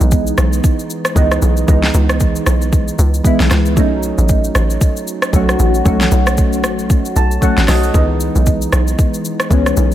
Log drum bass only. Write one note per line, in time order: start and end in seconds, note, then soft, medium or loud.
0.01 0.32 B1 medium
0.38 0.60 B1 medium
1.16 1.38 C#2 medium
1.42 1.64 B1 medium
1.68 1.90 C#2 loud
1.94 2.39 C#2 loud
2.46 2.91 B1 medium
2.99 3.21 C#2 loud
3.40 3.49 B1 medium
3.51 3.78 C#2 loud
3.77 4.12 B1 loud
4.18 4.50 A1 medium
4.55 4.77 A1 medium
5.33 5.55 B1 medium
5.59 5.82 A1 loud
5.86 6.08 B1 loud
6.12 6.65 B1 loud
6.64 7.08 A1 medium
7.16 7.38 B1 medium
7.57 7.67 A1 medium
7.68 7.90 B1 medium
7.94 8.29 C#2 loud
8.35 8.67 B1 medium
8.73 8.95 B1 medium
9.51 9.73 C#2 medium
9.77 9.95 B1 medium